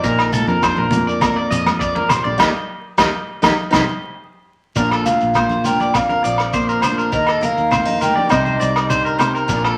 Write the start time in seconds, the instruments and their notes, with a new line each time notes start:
Already playing: steel-string acoustic guitar D#3
0.03 fingered electric bass A#1, steel-string acoustic guitar A#2, clean electric guitar A#4, kick, shekere
0.19 cross-stick, low agogo
0.32 steel-string acoustic guitar A#3, clean electric guitar A4, closed hi-hat, low conga, shekere
0.47 fingered electric bass F2, clean electric guitar A#4, high conga, shekere
0.62 steel-string acoustic guitar D4, clean electric guitar C5, kick, cross-stick, low agogo, shekere
0.77 fingered electric bass A#1, clean electric guitar A#4, high conga
0.91 fingered electric bass F2, steel-string acoustic guitar A#3, closed hi-hat, low conga, shekere
1.07 clean electric guitar D5, shekere
1.21 steel-string acoustic guitar F2, clean electric guitar A#4, kick, cross-stick, low conga, low agogo, shekere
1.36 clean electric guitar D5
1.51 fingered electric bass F2, steel-string acoustic guitar F3, clean electric guitar D#5, closed hi-hat, shekere
1.66 cross-stick, high conga, low agogo, shekere
1.80 clean electric guitar D5, kick, shekere
1.95 clean electric guitar A#4, high conga
2.09 steel-string acoustic guitar G4, clean electric guitar C5, cross-stick, closed hi-hat, low conga, low agogo, shekere
2.24 fingered electric bass A#1, clean electric guitar D5, high conga
2.38 fingered electric bass D#2, steel-string acoustic guitar G3 A#3 D#4, clean electric guitar G4 A#4 D#5, kick, snare, high conga, low agogo, shekere
2.98 fingered electric bass D#2, steel-string acoustic guitar G3 A#3 D#4, clean electric guitar G4 A#4 D#5, kick, snare, high conga, low agogo, shekere
3.42 fingered electric bass D#2, steel-string acoustic guitar G3 A#3 D#4, clean electric guitar G4 A#4 D#5, kick, snare, high conga, low agogo, shekere
3.71 fingered electric bass C2, steel-string acoustic guitar G3 C4 D#4, clean electric guitar G4 C5 D#5, kick, snare, high conga, low agogo, shekere
4.76 fingered electric bass A#1, steel-string acoustic guitar A#2 F3 A#3 D4 F4, clean electric guitar A#4, flute D5, kick, shekere
4.91 clean electric guitar A4, cross-stick, low agogo
5.05 steel-string acoustic guitar F3, flute F5, muted clean electric guitar stroke, closed hi-hat, high conga, low conga, shekere
5.20 fingered electric bass A#1, shekere
5.34 steel-string acoustic guitar A#3, clean electric guitar C5, kick, cross-stick, low conga, low agogo, shekere
5.49 high conga, shekere
5.64 steel-string acoustic guitar D4, clean electric guitar A#4, flute G5, closed hi-hat, low conga, shekere
5.80 clean electric guitar D5, high conga, shekere
5.94 steel-string acoustic guitar F2, flute F5, muted clean electric guitar stroke, kick, cross-stick, high conga, low agogo, shekere
6.09 clean electric guitar A#4, high conga, shekere
6.24 fingered electric bass A#1, steel-string acoustic guitar F3, clean electric guitar D5, closed hi-hat, shekere
6.38 cross-stick, low agogo, shekere
6.53 steel-string acoustic guitar A#3, clean electric guitar C5, kick, shekere
6.69 clean electric guitar A#4, shekere
6.82 steel-string acoustic guitar D4, clean electric guitar C5, cross-stick, closed hi-hat, low conga, low agogo, shekere
6.98 clean electric guitar A#4, shekere
7.12 fingered electric bass D#2, steel-string acoustic guitar D#3, clean electric guitar A#4, flute D#5, kick, shekere
7.27 clean electric guitar A4, cross-stick, low agogo
7.41 steel-string acoustic guitar A#3, clean electric guitar A#4, flute F5, closed hi-hat, high conga, low conga, shekere
7.57 fingered electric bass D#2, shekere
7.71 steel-string acoustic guitar C4, clean electric guitar C5, kick, cross-stick, low conga, low agogo, shekere
7.85 steel-string acoustic guitar D#4, high conga, shekere
8.01 steel-string acoustic guitar G4, clean electric guitar A#4, flute G5, closed hi-hat, low conga, shekere
8.16 clean electric guitar D5, high conga
8.29 fingered electric bass C2, steel-string acoustic guitar C3 C4 D#4 G4, clean electric guitar C5, flute D#5, muted steel-string acoustic guitar stroke, kick, cross-stick, high conga, low agogo, shekere
8.45 clean electric guitar C5, high conga, shekere
8.59 fingered electric bass C2, steel-string acoustic guitar D#3, clean electric guitar D5, closed hi-hat, shekere
8.76 cross-stick, low agogo, shekere
8.90 steel-string acoustic guitar D3, clean electric guitar C5, kick, shekere
9.05 clean electric guitar A#4, shekere
9.19 steel-string acoustic guitar C3, clean electric guitar C5, cross-stick, closed hi-hat, low conga, low agogo, shekere
9.35 clean electric guitar A#4, shekere
9.48 fingered electric bass A#1, steel-string acoustic guitar A#2 F3 A#3 D4 F4, clean electric guitar A#4, flute D5, kick, shekere
9.64 clean electric guitar A4, cross-stick, low agogo